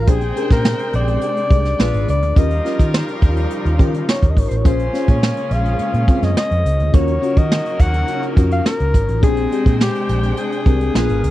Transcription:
Already playing: alto saxophone A#4
0.07 fingered electric bass A#1, string section C3 G#3 D4 G5, horn section C4 G#4 C5, fm electric piano D4 G4 G#4 C5, alto saxophone G#4, kick, closed hi-hat
0.21 closed hi-hat
0.36 fm electric piano C#4 G4 G#4 A#4, closed hi-hat
0.42 fm electric piano D4
0.50 fingered electric bass A#2, alto saxophone A#4, kick, snare, closed hi-hat
0.65 snare
0.79 closed hi-hat
0.93 fingered electric bass A#1, alto saxophone D5, closed hi-hat
1.07 closed hi-hat
1.21 closed hi-hat
1.37 closed hi-hat
1.50 fingered electric bass C2, fm electric piano D4 G4 G#4 D5, kick, closed hi-hat
1.65 snare, closed hi-hat
1.78 fingered electric bass A#1, string section A#2 B3, fm electric piano D4 F4 G#4 B4, horn section F4 G#4 B4, snare
1.94 fingered electric bass G#1, closed hi-hat
2.08 fingered electric bass C#2, alto saxophone D5, closed hi-hat
2.22 fingered electric bass D2, closed hi-hat
2.36 fingered electric bass D#2, string section C#3 F3 G3 D#4, fm electric piano C#4 F4 G4 A#4, horn section F4 G4 A#4, alto saxophone D#5, kick, closed hi-hat
2.50 closed hi-hat
2.64 fm electric piano C#4 F4 G4 A#4, snare, closed hi-hat
2.79 fingered electric bass D#3, kick, closed hi-hat
2.94 snare
3.08 closed hi-hat
3.22 fingered electric bass D#2, kick, closed hi-hat
3.37 closed hi-hat
3.51 closed hi-hat
3.65 fingered electric bass D#2, closed hi-hat
3.79 fingered electric bass D#3, fm electric piano C#4 F4 G4 A#4, kick, closed hi-hat
3.94 closed hi-hat
4.09 alto saxophone C#5, snare
4.23 fingered electric bass D#2, kick, closed hi-hat
4.30 alto saxophone D#5
4.37 fingered electric bass G#1, alto saxophone C#5, kick, open hi-hat
4.48 fingered electric bass A1, alto saxophone C5, closed hi-hat
4.57 alto saxophone C#5
4.64 fingered electric bass A#1, string section C#3 G#3 A#3 C#4, fm electric piano C#4 F4 G#4 C5, horn section C#4 F4 G#4, alto saxophone C5, kick, closed hi-hat
4.79 closed hi-hat
4.93 fm electric piano C#4 F4 G#4 C#5, snare, closed hi-hat
5.08 fingered electric bass A#2, alto saxophone C#5, kick, closed hi-hat
5.23 snare
5.37 closed hi-hat
5.51 fingered electric bass A#1, alto saxophone F5, closed hi-hat
5.65 closed hi-hat
5.79 muted fingered electric bass stroke, closed hi-hat
5.94 fingered electric bass A#2, closed hi-hat
6.07 fm electric piano C4 F4 G#4 C5, kick, closed hi-hat
6.14 fm electric piano C#4
6.22 fingered electric bass F#2, alto saxophone D#5, snare, closed hi-hat
6.37 alto saxophone D#5, snare
6.51 fingered electric bass F2, closed hi-hat
6.65 fingered electric bass C#2, closed hi-hat
6.80 fingered electric bass D2, closed hi-hat
6.93 fingered electric bass D#2, string section C#3 F#3 C#4 D#4, horn section A#3 F#4 A#4, fm electric piano C#4 F4 F#4 A#4, alto saxophone C#5, kick, closed hi-hat
7.08 closed hi-hat
7.22 fm electric piano C#4 F4 F#4 C#5, closed hi-hat
7.37 fingered electric bass D#3, alto saxophone D#5, kick, closed hi-hat
7.52 snare
7.65 closed hi-hat
7.80 fingered electric bass D#2, alto saxophone F#5, kick, closed hi-hat
7.94 closed hi-hat
8.08 closed hi-hat
8.23 closed hi-hat
8.36 fingered electric bass F2, fm electric piano C#4 F4 F#4 A#4, kick, closed hi-hat
8.51 alto saxophone F5, closed hi-hat
8.66 alto saxophone A#4, snare
8.80 fingered electric bass C#2, closed hi-hat
8.94 fingered electric bass G#1, kick, closed hi-hat
9.08 fingered electric bass A1, closed hi-hat
9.22 fingered electric bass A#1, string section C3 G#3 D4 G5, horn section G#3 C4 C5, fm electric piano C4 D4 G4 G#4, alto saxophone G#4, kick, closed hi-hat
9.37 closed hi-hat
9.51 fm electric piano G#3 C4 D4 G4, closed hi-hat
9.66 fingered electric bass A#2, kick, closed hi-hat
9.81 alto saxophone G4, snare
9.95 closed hi-hat
10.09 fingered electric bass A#1, closed hi-hat
10.23 closed hi-hat
10.37 alto saxophone G#4, closed hi-hat
10.52 closed hi-hat
10.66 fingered electric bass C2, fm electric piano C4 D4 G4 A#4, kick, closed hi-hat
10.81 closed hi-hat
10.94 fingered electric bass A#1, string section B2 A#4, fm electric piano B3 D4 F4 G#4, horn section F4 G#4 B4, snare
11.09 fingered electric bass G#1, closed hi-hat
11.23 fingered electric bass C#2, closed hi-hat

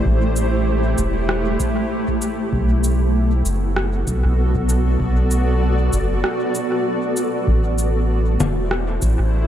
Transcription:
Already playing: ambient pad A3 E4 G4 C5
0.05 sub bass A1, kick
0.36 shaker
0.98 sub bass E1, kick, shaker
1.29 cross-stick
1.60 kick, shaker
2.08 kick
2.22 shaker
2.53 sub bass B1, ambient pad B3, kick
2.66 ambient pad A4
2.80 ambient pad F#4
2.84 shaker
3.45 sub bass F#1, shaker
3.76 ambient pad D5, cross-stick
4.07 sub bass B1, kick, shaker
4.25 sub bass B1
4.56 kick
4.69 shaker
5.00 sub bass B1, kick
5.31 shaker
5.93 sub bass F#1, kick, shaker
6.24 cross-stick
6.55 shaker
7.17 shaker
7.47 sub bass A1, ambient pad A3, kick
7.75 ambient pad E4 C5, shaker
8.28 ambient pad G4
8.40 sub bass E1, low conga, shaker
8.71 cross-stick
9.02 sub bass A1, kick, shaker
9.19 sub bass A1

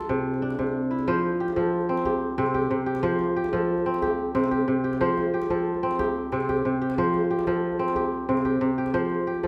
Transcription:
Already playing: kora F3 D4 F4 A4
0.01 djembe slap, djembe tone
0.09 kora C3, djembe bass
0.34 djembe tone
0.42 kora D4, djembe slap
0.50 djembe slap
0.59 kora C3, djembe bass
0.67 djembe tone
0.83 djembe slap
0.91 kora E4
0.99 djembe slap, djembe tone
1.07 kora F3 C5, djembe bass
1.40 kora G4
1.48 djembe slap, djembe tone
1.56 kora F3 A4, djembe bass
1.81 djembe slap, djembe tone
1.89 kora C4
1.97 djembe slap
2.05 kora G4, djembe tone, djembe bass
2.13 djembe slap
2.38 kora C3 C4, djembe tone
2.46 djembe slap
2.54 kora G4, djembe bass
2.62 djembe tone
2.71 kora C3, djembe slap
2.86 kora G4
2.95 djembe slap, djembe tone
3.03 kora F3 C5, djembe bass
3.19 djembe tone
3.36 kora G4
3.44 djembe slap, djembe tone
3.53 kora F3 A4, djembe bass
3.78 djembe slap, djembe tone
3.86 kora C4
3.94 djembe slap
4.02 kora G4, djembe tone, djembe bass
4.11 djembe slap
4.35 kora C3 C4, djembe tone
4.44 djembe slap
4.51 kora G4, djembe bass
4.60 djembe tone
4.68 kora C3, djembe slap
4.84 kora G4
4.93 djembe slap, djembe tone
5.01 kora F3 C5, djembe bass
5.17 djembe tone
5.34 kora G4
5.42 djembe slap, djembe tone
5.50 kora F3 A4, djembe bass
5.74 djembe slap, djembe tone
5.83 kora C4
5.91 djembe slap
5.99 kora G4, djembe tone, djembe bass
6.07 djembe slap
6.32 kora C3 C4, djembe tone
6.40 djembe slap
6.49 kora G4, djembe bass
6.57 djembe tone
6.65 kora C3, djembe slap
6.82 kora G4
6.90 djembe slap, djembe tone
6.98 kora F3 C5, djembe bass
7.14 djembe tone
7.31 kora G4
7.39 djembe slap, djembe tone
7.47 kora F3 A4, djembe slap, djembe bass
7.72 djembe tone
7.79 kora C4
7.88 djembe slap
7.96 kora G4, djembe tone, djembe bass
8.04 djembe slap
8.29 kora C3 C4, djembe slap, djembe tone
8.37 djembe slap
8.45 kora G4, djembe bass
8.61 kora C3, djembe slap
8.78 kora G4
8.86 djembe slap, djembe tone
8.94 kora F3 C5, djembe bass
9.10 djembe tone
9.27 kora G4
9.35 djembe tone
9.43 kora F3 A4, djembe bass

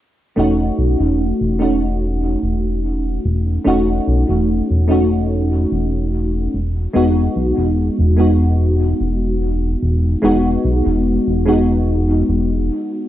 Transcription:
0.36 analog synth bass E1, fm electric piano A3 C#4 D#4 F#4
0.78 analog synth bass B1
1.00 analog synth bass E1
1.41 analog synth bass E1
1.59 fm electric piano A3 C#4 D#4 F#4
2.43 analog synth bass E1
3.25 analog synth bass E1
3.64 analog synth bass E1, fm electric piano A3 C#4 D#4 F#4
4.07 analog synth bass B1
4.29 analog synth bass E1
4.70 analog synth bass E1
4.88 fm electric piano A3 C#4 D#4 F#4
5.72 analog synth bass E1
6.54 analog synth bass E1
6.93 analog synth bass E1, fm electric piano G#3 B3 D#4 F#4
7.36 analog synth bass B1
7.58 analog synth bass E1
7.99 analog synth bass E1
8.17 fm electric piano G#3 B3 D#4 F#4
9.00 analog synth bass E1
9.83 analog synth bass E1
10.22 analog synth bass E1, fm electric piano G#3 B3 D#4 F#4
10.65 analog synth bass B1
10.86 analog synth bass E1
11.28 analog synth bass E1
11.46 fm electric piano G#3 B3 D#4 F#4
12.29 analog synth bass E1

